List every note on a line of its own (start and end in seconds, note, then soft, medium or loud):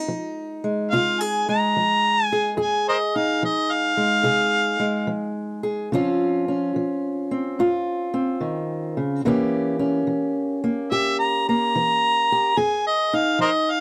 0.00 0.64 G#3 medium
0.00 2.58 D#4 soft
0.08 0.86 F3 medium
0.64 1.48 G#3 medium
0.91 1.70 C3 medium
0.91 1.21 F4 medium
0.91 1.22 F5 loud
1.20 2.30 G#4 medium
1.20 1.47 G#5 medium
1.49 3.97 G#3 medium
1.49 2.25 A#5 loud
1.76 2.53 F3 medium
2.25 2.56 G#5 loud
2.32 2.57 G#4 medium
2.57 3.35 F2 medium
2.57 4.24 G#4 medium
2.62 2.87 G#5 medium
2.89 2.98 A#4 medium
2.89 2.96 C5 medium
2.89 3.18 D#5 medium
3.16 5.89 D#4 medium
3.16 3.42 F5 medium
3.43 4.19 F3 medium
3.43 3.74 D#5 medium
3.73 5.33 F5 loud
3.97 4.78 G#3 medium
4.23 5.01 C3 medium
4.23 5.62 G#4 medium
4.80 5.91 G#3 medium
5.07 5.85 F3 medium
5.63 5.88 G#4 medium
5.92 6.69 C#3 medium
5.92 6.75 F3 medium
5.92 7.31 C4 medium
5.92 6.48 C#4 medium
5.92 7.59 F4 medium
6.48 9.21 C#4 medium
6.76 7.52 F3 medium
7.31 8.13 C4 medium
7.59 8.36 G#2 medium
7.59 9.25 F4 medium
8.14 9.25 C4 medium
8.41 8.95 D#3 medium
8.97 9.24 C#3 medium
9.25 10.02 C3 medium
9.25 10.06 E3 medium
9.25 10.63 A#3 medium
9.25 9.78 C#4 medium
9.25 10.91 G4 medium
9.79 12.53 C#4 medium
10.07 10.84 E3 medium
10.64 11.46 A#3 medium
10.91 11.68 G2 medium
10.91 12.29 G4 medium
10.91 11.18 E5 loud
11.19 11.45 A#5 medium
11.49 12.55 A#3 medium
11.49 12.59 A#5 loud
11.75 12.52 E3 medium
12.32 12.55 G4 medium
12.57 13.34 F2 medium
12.57 13.80 G#4 medium
12.57 12.84 G#5 loud
12.87 13.17 D#5 medium
13.13 13.80 D#4 medium
13.13 13.40 F5 medium
13.39 13.80 F3 medium
13.39 13.50 A#4 medium
13.39 13.50 C5 medium
13.39 13.72 D#5 loud
13.71 13.80 F5 loud